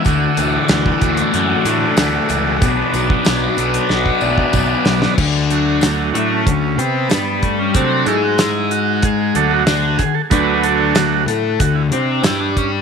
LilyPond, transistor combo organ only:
<<
  \new Staff \with { instrumentName = "Transistor combo organ" } { \time 4/4 \key d \lydian \tempo 4 = 94 <fis' d''>1~ | <fis' d''>1 | r4. d'16 cis'8. b4 a16 cis'16 | r8 e'16 fis'16 e'8 fis'8 gis'8 a'16 fis'8. gis'16 a'16 |
b'8 a'8 fis'8 r8 fis'16 e'16 d'8 e'16 d'16 cis'8 | }
  \new Staff \with { instrumentName = "Transistor combo organ" } { \time 4/4 \key d \lydian <a e'>1 | <b d'>1 | r8 <fis a d'>4. r2 | <fis a d'>8 r2 <fis a d'>8 r4 |
<fis a d'>4. r2 r8 | }
>>